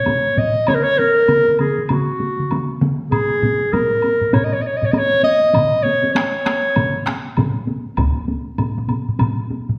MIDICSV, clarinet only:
0, 0, Header, 1, 2, 480
1, 0, Start_track
1, 0, Tempo, 609137
1, 530, Time_signature, 4, 2, 24, 8
1, 7711, End_track
2, 0, Start_track
2, 0, Title_t, "Clarinet"
2, 0, Program_c, 0, 71
2, 0, Note_on_c, 0, 73, 82
2, 303, Note_on_c, 0, 75, 92
2, 314, Note_off_c, 0, 73, 0
2, 537, Note_on_c, 0, 73, 95
2, 549, Note_off_c, 0, 75, 0
2, 588, Note_on_c, 0, 70, 79
2, 600, Note_off_c, 0, 73, 0
2, 656, Note_on_c, 0, 73, 108
2, 668, Note_off_c, 0, 70, 0
2, 776, Note_on_c, 0, 70, 100
2, 788, Note_off_c, 0, 73, 0
2, 1255, Note_off_c, 0, 70, 0
2, 1261, Note_on_c, 0, 68, 73
2, 1457, Note_off_c, 0, 68, 0
2, 1457, Note_on_c, 0, 68, 47
2, 1508, Note_on_c, 0, 66, 64
2, 1520, Note_off_c, 0, 68, 0
2, 2221, Note_off_c, 0, 66, 0
2, 2454, Note_on_c, 0, 68, 91
2, 2934, Note_on_c, 0, 70, 87
2, 2946, Note_off_c, 0, 68, 0
2, 3417, Note_on_c, 0, 73, 70
2, 3429, Note_off_c, 0, 70, 0
2, 3501, Note_on_c, 0, 75, 69
2, 3513, Note_off_c, 0, 73, 0
2, 3572, Note_on_c, 0, 73, 74
2, 3583, Note_off_c, 0, 75, 0
2, 3637, Note_on_c, 0, 75, 65
2, 3648, Note_off_c, 0, 73, 0
2, 3677, Note_on_c, 0, 73, 72
2, 3689, Note_off_c, 0, 75, 0
2, 3757, Note_on_c, 0, 75, 77
2, 3769, Note_off_c, 0, 73, 0
2, 3824, Note_on_c, 0, 73, 81
2, 3836, Note_off_c, 0, 75, 0
2, 3874, Note_on_c, 0, 75, 75
2, 3885, Note_off_c, 0, 73, 0
2, 3924, Note_on_c, 0, 73, 99
2, 3936, Note_off_c, 0, 75, 0
2, 4123, Note_off_c, 0, 73, 0
2, 4127, Note_on_c, 0, 75, 99
2, 4595, Note_on_c, 0, 73, 92
2, 4607, Note_off_c, 0, 75, 0
2, 4829, Note_off_c, 0, 73, 0
2, 4834, Note_on_c, 0, 73, 89
2, 5771, Note_off_c, 0, 73, 0
2, 7711, End_track
0, 0, End_of_file